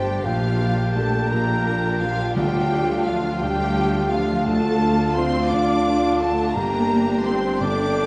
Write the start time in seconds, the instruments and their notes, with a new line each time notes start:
Already playing: double bass section G1, grand piano G1 G2 A3 A#3 D4 G4, cello section G3, violin section D4 G4 G5, clarinet D4, viola section G4, french horn section C5, flute G5, oboe A5
0.24 double bass section A#1, grand piano A#1 A#2, cello section F3, violin section D4 F5, viola section F4, french horn section G4, flute F5, oboe G5
0.61 grand piano A#3 D4 G4
0.95 grand piano A#2 D4 G4, cello section A3, viola section A4, violin section A5, flute A5
1.30 grand piano A#1 A#2, cello section A#3, french horn section F4, viola section A#4, flute A#5, violin section A#5
1.67 grand piano A#3 D4 G4
2.00 cello section F3, grand piano A#3 D4 G4, viola section F4, flute F5, violin section F5
2.35 double bass section D2, grand piano D2 D3, timpani D3, cello section G3, clarinet D4, violin section F4 G5, viola section G4, oboe F5, flute G5
2.72 grand piano A3 D4 F4
3.06 cello section F3, grand piano A3 D4 F4, viola section F4, violin section F5, flute F5
3.40 grand piano D2 D3, cello section G3, french horn section G4, viola section G4, violin section G5, flute G5
3.77 grand piano A3 D4 F4
4.11 cello section F3, grand piano A3 D4 F4, viola section F4, flute F5, violin section F5
4.45 grand piano D2 D3, cello section A3, violin section D4 A5, french horn section F4, viola section A4, flute A5
4.83 grand piano A3 D4 F4
5.15 grand piano A3 D4, cello section C4, viola section C5, violin section C6, flute C6
5.19 grand piano F4
5.51 grand piano D2 D3, cello section D4, viola section D5, violin section D6, flute D6
5.87 grand piano A3 D4 F4
6.20 cello section A3, grand piano A3 D4 F4, viola section A4, flute A5, violin section A5
6.55 grand piano G1 G2, double bass section G1, viola section A#3, cello section A#3, clarinet D4, violin section G4 A#5, french horn section G4, oboe G5, flute A#5
6.91 grand piano A#3 D4 G4
7.25 grand piano A3 D4 G4, cello section C4, viola section C5, flute C6, violin section C6
7.60 grand piano G1 G2, cello section D4, french horn section A4, viola section D5, violin section D6, flute D6
7.98 grand piano A3 D4 G4